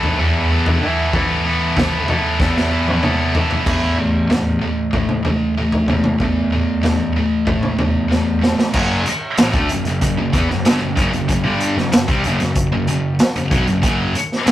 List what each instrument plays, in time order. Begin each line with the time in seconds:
Already playing: picked electric bass E3, distorted electric guitar E3 B3 E4 A4
0.03 floor tom
0.18 picked electric bass E2, distorted electric guitar E3 B3 E4 A4
0.50 distorted electric guitar E3 B3 E4 A4
0.66 floor tom
0.81 picked electric bass E3, distorted electric guitar E3 B3 E4 A4
1.13 distorted electric guitar E3 B3 E4 A4, picked electric bass E3, kick, floor tom
1.45 distorted electric guitar E3 B3 E4 A4
1.77 distorted electric guitar E3 B3 E4 A4, kick, snare, floor tom, mid tom
2.08 distorted electric guitar E3 B3 E4 A4, floor tom
2.40 picked electric bass E2, distorted electric guitar E3 B3 E4 A4, kick, snare
2.57 snare
2.72 distorted electric guitar E3 B3 E4 A4
2.88 high tom
3.03 distorted electric guitar E3 B3 E4 A4, mid tom
3.35 distorted electric guitar E3 B3 E4 A4, floor tom
3.51 floor tom
3.66 picked electric bass E2, distorted electric guitar E3 A3 E4, kick, floor tom, crash
3.98 distorted electric guitar E3 A3
4.30 distorted electric guitar E3 A3, snare, floor tom
4.62 distorted electric guitar E3 A3
4.93 picked electric bass A2, distorted electric guitar E3 A3, kick, floor tom
5.09 mid tom
5.25 distorted electric guitar E3 A3, floor tom, mid tom
5.58 distorted electric guitar E3 A3
5.72 floor tom
5.88 picked electric bass E2, distorted electric guitar E3 A3, mid tom
6.04 mid tom
6.20 picked electric bass E2, distorted electric guitar E3 A3, kick, floor tom
6.52 distorted electric guitar E3 A3
6.83 distorted electric guitar E3 A3, snare, floor tom
7.16 distorted electric guitar E3 A3
7.47 picked electric bass A2, distorted electric guitar E3 A3, kick, floor tom
7.63 mid tom
7.79 picked electric bass E2, distorted electric guitar E3 A3, floor tom, mid tom
8.11 distorted electric guitar E3 A3, snare
8.42 distorted electric guitar E3 A3, snare
8.59 snare
8.74 picked electric bass F#1, distorted electric guitar F#2 C#3 F#3, kick, crash
9.06 muted picked electric bass stroke, muted distorted electric guitar stroke, closed hi-hat
9.38 picked electric bass A1, distorted electric guitar A2 E3, snare, closed hi-hat
9.53 picked electric bass D2, distorted electric guitar D3 A3, kick, closed hi-hat
9.69 picked electric bass F#1, distorted electric guitar F#2 C#3, closed hi-hat
9.85 picked electric bass F#1, distorted electric guitar F#2 C#3, closed hi-hat
10.01 picked electric bass F#1, distorted electric guitar F#2 C#3, kick, closed hi-hat
10.18 picked electric bass F#1, distorted electric guitar F#2 C#3
10.33 picked electric bass E2, distorted electric guitar E3 B3, kick, closed hi-hat
10.49 picked electric bass F#1, distorted electric guitar F#2 C#3, snare
10.65 picked electric bass G1, distorted electric guitar G2 D3, snare, closed hi-hat
10.81 picked electric bass F#1, distorted electric guitar F#2 C#3
10.96 picked electric bass F#1, distorted electric guitar F#2 C#3, kick, closed hi-hat
11.13 picked electric bass F#1, distorted electric guitar F#2 C#3, closed hi-hat
11.29 picked electric bass F#1, distorted electric guitar F#2 C#3, kick, closed hi-hat
11.44 picked electric bass G1, distorted electric guitar G2 D3 G3
11.60 closed hi-hat
11.77 picked electric bass F#1, distorted electric guitar F#2 C#3, snare
11.92 picked electric bass F#1, distorted electric guitar F#2 C#3, snare, closed hi-hat
12.08 picked electric bass C2, distorted electric guitar C3 G3, kick, closed hi-hat
12.24 picked electric bass F#1, distorted electric guitar F#2 C#3, closed hi-hat
12.40 picked electric bass F#1, distorted electric guitar F#2 C#3, snare, closed hi-hat
12.55 kick, closed hi-hat
12.72 picked electric bass F#1, distorted electric guitar F#2 C#3
12.87 picked electric bass F#1, distorted electric guitar F#2 C#3, closed hi-hat
13.19 snare, closed hi-hat
13.36 picked electric bass F#1, distorted electric guitar F#2 C#3, closed hi-hat
13.51 picked electric bass B1, distorted electric guitar B2 F#3, kick, closed hi-hat
13.67 picked electric bass F#1, distorted electric guitar F#2 C#3, closed hi-hat
13.82 picked electric bass F#1, distorted electric guitar F#2 C#3 F#3, kick, closed hi-hat
14.14 muted distorted electric guitar stroke, muted picked electric bass stroke, closed hi-hat
14.32 snare
14.46 picked electric bass A1, distorted electric guitar A2 E3, snare, closed hi-hat